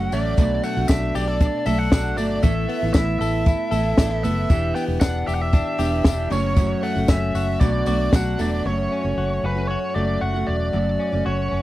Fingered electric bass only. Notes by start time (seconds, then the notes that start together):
0.12 A1
0.38 B1
0.77 B1
0.89 B1
1.15 B1
1.67 B1
2.18 G1
2.44 A1
2.83 A1
2.95 A1
3.20 A1
3.72 A1
3.98 A1
4.25 F#1
4.50 E1
4.88 E1
5.28 E1
5.79 E1
6.05 E1
6.31 F#1
6.96 F#1
7.09 F#1
7.35 F#1
7.61 B1
7.87 B1
8.13 B1
8.39 E1
8.65 F#1
9.04 F#1
9.17 F#1
9.43 F#1
9.96 F#1
10.22 F#1
10.48 E1
10.74 F#1
11.13 F#1
11.26 F#1
11.52 F#1